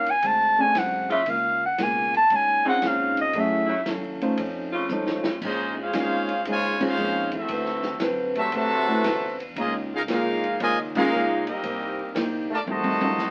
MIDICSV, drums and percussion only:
0, 0, Header, 1, 2, 480
1, 0, Start_track
1, 0, Tempo, 518583
1, 1171, Time_signature, 4, 2, 24, 8
1, 12315, End_track
2, 0, Start_track
2, 0, Title_t, "Drums"
2, 58, Note_on_c, 9, 51, 50
2, 150, Note_off_c, 9, 51, 0
2, 208, Note_on_c, 9, 36, 22
2, 208, Note_on_c, 9, 51, 75
2, 301, Note_off_c, 9, 36, 0
2, 301, Note_off_c, 9, 51, 0
2, 690, Note_on_c, 9, 36, 26
2, 694, Note_on_c, 9, 38, 76
2, 694, Note_on_c, 9, 44, 70
2, 694, Note_on_c, 9, 51, 75
2, 783, Note_off_c, 9, 36, 0
2, 786, Note_off_c, 9, 38, 0
2, 786, Note_off_c, 9, 44, 0
2, 786, Note_off_c, 9, 51, 0
2, 1023, Note_on_c, 9, 51, 53
2, 1116, Note_off_c, 9, 51, 0
2, 1166, Note_on_c, 9, 51, 66
2, 1169, Note_on_c, 9, 36, 27
2, 1258, Note_off_c, 9, 51, 0
2, 1261, Note_off_c, 9, 36, 0
2, 1650, Note_on_c, 9, 36, 19
2, 1650, Note_on_c, 9, 38, 74
2, 1650, Note_on_c, 9, 44, 60
2, 1650, Note_on_c, 9, 51, 75
2, 1743, Note_off_c, 9, 36, 0
2, 1743, Note_off_c, 9, 38, 0
2, 1743, Note_off_c, 9, 44, 0
2, 1743, Note_off_c, 9, 51, 0
2, 1983, Note_on_c, 9, 51, 49
2, 2076, Note_off_c, 9, 51, 0
2, 2129, Note_on_c, 9, 51, 69
2, 2130, Note_on_c, 9, 36, 21
2, 2222, Note_off_c, 9, 51, 0
2, 2223, Note_off_c, 9, 36, 0
2, 2609, Note_on_c, 9, 36, 23
2, 2609, Note_on_c, 9, 38, 82
2, 2609, Note_on_c, 9, 44, 57
2, 2609, Note_on_c, 9, 51, 78
2, 2702, Note_off_c, 9, 36, 0
2, 2702, Note_off_c, 9, 38, 0
2, 2702, Note_off_c, 9, 44, 0
2, 2702, Note_off_c, 9, 51, 0
2, 2935, Note_on_c, 9, 51, 55
2, 3027, Note_off_c, 9, 51, 0
2, 3085, Note_on_c, 9, 51, 72
2, 3088, Note_on_c, 9, 36, 26
2, 3178, Note_off_c, 9, 51, 0
2, 3181, Note_off_c, 9, 36, 0
2, 3571, Note_on_c, 9, 38, 77
2, 3571, Note_on_c, 9, 44, 51
2, 3571, Note_on_c, 9, 51, 67
2, 3663, Note_off_c, 9, 38, 0
2, 3663, Note_off_c, 9, 44, 0
2, 3663, Note_off_c, 9, 51, 0
2, 3901, Note_on_c, 9, 51, 52
2, 3994, Note_off_c, 9, 51, 0
2, 4049, Note_on_c, 9, 51, 78
2, 4050, Note_on_c, 9, 36, 21
2, 4142, Note_off_c, 9, 36, 0
2, 4142, Note_off_c, 9, 51, 0
2, 4528, Note_on_c, 9, 44, 64
2, 4528, Note_on_c, 9, 48, 53
2, 4621, Note_off_c, 9, 44, 0
2, 4621, Note_off_c, 9, 48, 0
2, 4689, Note_on_c, 9, 38, 72
2, 4782, Note_off_c, 9, 38, 0
2, 4848, Note_on_c, 9, 38, 93
2, 4941, Note_off_c, 9, 38, 0
2, 5011, Note_on_c, 9, 36, 83
2, 5012, Note_on_c, 9, 49, 90
2, 5104, Note_off_c, 9, 36, 0
2, 5105, Note_off_c, 9, 49, 0
2, 5491, Note_on_c, 9, 36, 27
2, 5492, Note_on_c, 9, 38, 75
2, 5492, Note_on_c, 9, 44, 63
2, 5492, Note_on_c, 9, 51, 75
2, 5584, Note_off_c, 9, 36, 0
2, 5584, Note_off_c, 9, 38, 0
2, 5584, Note_off_c, 9, 44, 0
2, 5584, Note_off_c, 9, 51, 0
2, 5818, Note_on_c, 9, 51, 50
2, 5911, Note_off_c, 9, 51, 0
2, 5972, Note_on_c, 9, 36, 30
2, 5973, Note_on_c, 9, 51, 74
2, 6065, Note_off_c, 9, 36, 0
2, 6065, Note_off_c, 9, 51, 0
2, 6299, Note_on_c, 9, 36, 101
2, 6299, Note_on_c, 9, 49, 90
2, 6391, Note_off_c, 9, 49, 0
2, 6392, Note_off_c, 9, 36, 0
2, 6447, Note_on_c, 9, 44, 61
2, 6540, Note_off_c, 9, 44, 0
2, 6771, Note_on_c, 9, 51, 56
2, 6776, Note_on_c, 9, 36, 67
2, 6864, Note_off_c, 9, 51, 0
2, 6869, Note_off_c, 9, 36, 0
2, 6927, Note_on_c, 9, 51, 75
2, 6929, Note_on_c, 9, 36, 20
2, 7020, Note_off_c, 9, 51, 0
2, 7022, Note_off_c, 9, 36, 0
2, 7087, Note_on_c, 9, 38, 32
2, 7180, Note_off_c, 9, 38, 0
2, 7244, Note_on_c, 9, 38, 53
2, 7337, Note_off_c, 9, 38, 0
2, 7403, Note_on_c, 9, 38, 75
2, 7403, Note_on_c, 9, 44, 58
2, 7403, Note_on_c, 9, 51, 78
2, 7407, Note_on_c, 9, 36, 22
2, 7496, Note_off_c, 9, 38, 0
2, 7496, Note_off_c, 9, 44, 0
2, 7496, Note_off_c, 9, 51, 0
2, 7500, Note_off_c, 9, 36, 0
2, 7732, Note_on_c, 9, 51, 55
2, 7825, Note_off_c, 9, 51, 0
2, 7885, Note_on_c, 9, 51, 68
2, 7887, Note_on_c, 9, 36, 21
2, 7978, Note_off_c, 9, 51, 0
2, 7980, Note_off_c, 9, 36, 0
2, 8369, Note_on_c, 9, 38, 85
2, 8369, Note_on_c, 9, 44, 63
2, 8369, Note_on_c, 9, 51, 86
2, 8461, Note_off_c, 9, 38, 0
2, 8461, Note_off_c, 9, 44, 0
2, 8461, Note_off_c, 9, 51, 0
2, 8701, Note_on_c, 9, 51, 57
2, 8794, Note_off_c, 9, 51, 0
2, 8851, Note_on_c, 9, 36, 25
2, 8852, Note_on_c, 9, 51, 75
2, 8944, Note_off_c, 9, 36, 0
2, 8944, Note_off_c, 9, 51, 0
2, 9330, Note_on_c, 9, 36, 29
2, 9331, Note_on_c, 9, 38, 73
2, 9331, Note_on_c, 9, 44, 51
2, 9331, Note_on_c, 9, 51, 79
2, 9423, Note_off_c, 9, 36, 0
2, 9423, Note_off_c, 9, 38, 0
2, 9423, Note_off_c, 9, 44, 0
2, 9423, Note_off_c, 9, 51, 0
2, 9661, Note_on_c, 9, 51, 53
2, 9753, Note_off_c, 9, 51, 0
2, 9809, Note_on_c, 9, 36, 27
2, 9812, Note_on_c, 9, 51, 78
2, 9902, Note_off_c, 9, 36, 0
2, 9905, Note_off_c, 9, 51, 0
2, 10136, Note_on_c, 9, 36, 102
2, 10137, Note_on_c, 9, 49, 96
2, 10229, Note_off_c, 9, 36, 0
2, 10229, Note_off_c, 9, 49, 0
2, 10289, Note_on_c, 9, 44, 63
2, 10381, Note_off_c, 9, 44, 0
2, 10615, Note_on_c, 9, 51, 57
2, 10708, Note_off_c, 9, 51, 0
2, 10768, Note_on_c, 9, 36, 26
2, 10769, Note_on_c, 9, 51, 68
2, 10861, Note_off_c, 9, 36, 0
2, 10862, Note_off_c, 9, 51, 0
2, 11247, Note_on_c, 9, 36, 25
2, 11252, Note_on_c, 9, 38, 77
2, 11252, Note_on_c, 9, 44, 56
2, 11252, Note_on_c, 9, 51, 73
2, 11340, Note_off_c, 9, 36, 0
2, 11345, Note_off_c, 9, 38, 0
2, 11345, Note_off_c, 9, 44, 0
2, 11345, Note_off_c, 9, 51, 0
2, 11730, Note_on_c, 9, 48, 61
2, 11823, Note_off_c, 9, 48, 0
2, 11885, Note_on_c, 9, 48, 73
2, 11977, Note_off_c, 9, 48, 0
2, 12043, Note_on_c, 9, 48, 97
2, 12136, Note_off_c, 9, 48, 0
2, 12207, Note_on_c, 9, 38, 63
2, 12207, Note_on_c, 9, 44, 71
2, 12300, Note_off_c, 9, 38, 0
2, 12300, Note_off_c, 9, 44, 0
2, 12315, End_track
0, 0, End_of_file